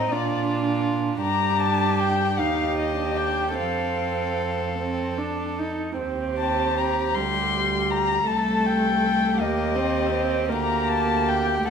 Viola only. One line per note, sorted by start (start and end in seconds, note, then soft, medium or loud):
0.00 0.13 C4 soft
0.12 1.22 D4 soft
1.22 2.39 D4 soft
2.38 2.97 D#4 soft
2.98 3.57 D4 soft
3.58 4.68 C4 soft
4.79 5.20 C4 soft
5.18 5.60 D4 soft
5.59 5.98 D#4 soft
5.99 7.17 C4 soft
7.15 8.27 G3 soft
8.28 9.41 A3 soft
9.39 9.77 A#3 medium
9.76 10.12 C4 medium
10.13 10.50 C4 medium
10.49 11.64 A#3 medium
11.65 11.70 A3 soft